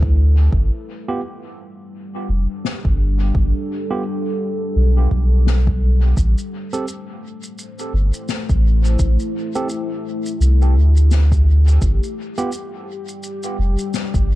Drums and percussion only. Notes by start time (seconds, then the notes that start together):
0.03 kick
0.52 kick
2.65 snare
2.85 kick
3.35 kick
5.11 kick
5.47 snare
5.67 kick
6.17 kick, shaker
6.38 shaker
6.73 shaker
6.88 shaker
7.43 shaker
7.58 shaker
7.79 shaker
8.14 shaker
8.29 snare, shaker
8.49 kick, shaker
8.85 shaker
8.99 kick, shaker
9.20 shaker
9.55 shaker
9.69 shaker
10.26 shaker
10.42 shaker
10.62 shaker
10.97 shaker
11.11 snare, shaker
11.32 kick, shaker
11.68 shaker
11.82 kick, shaker
12.03 shaker
12.38 shaker
12.52 shaker
13.08 shaker
13.23 shaker
13.43 shaker
13.79 shaker
13.94 snare, shaker
14.14 kick, shaker